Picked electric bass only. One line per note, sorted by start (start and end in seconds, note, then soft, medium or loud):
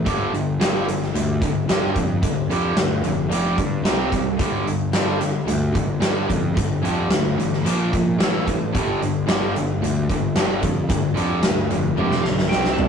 0.07 0.58 G1 medium
0.60 1.11 G1 medium
1.14 1.40 D2 medium
1.42 1.66 G1 medium
1.67 1.93 G1 medium
1.96 2.21 F2 medium
2.23 2.47 G1 medium
2.47 2.74 F2 medium
2.75 3.02 D2 medium
3.02 3.29 F1 medium
3.29 3.56 F1 medium
3.58 3.84 G2 medium
3.83 4.36 C2 medium
4.39 4.91 G1 medium
4.91 5.44 G1 medium
5.46 5.73 D2 medium
5.75 6.00 G1 medium
6.00 6.27 G1 medium
6.30 6.55 F2 medium
6.57 6.82 G1 medium
6.83 7.09 F2 medium
7.10 7.36 D2 medium
7.37 7.63 A1 medium
7.65 7.91 A#1 medium
7.93 8.17 A#2 medium
8.18 8.70 A1 medium
8.74 9.26 G1 medium
9.27 9.79 G1 medium
9.81 10.07 D2 medium
10.09 10.35 G1 medium
10.35 10.61 G1 medium
10.63 10.89 F2 medium
10.90 11.16 G1 medium
11.17 11.42 F2 medium
11.44 11.69 D2 medium
11.71 11.96 F1 medium
11.97 12.23 F1 medium
12.23 12.49 B1 medium
12.51 12.88 C2 medium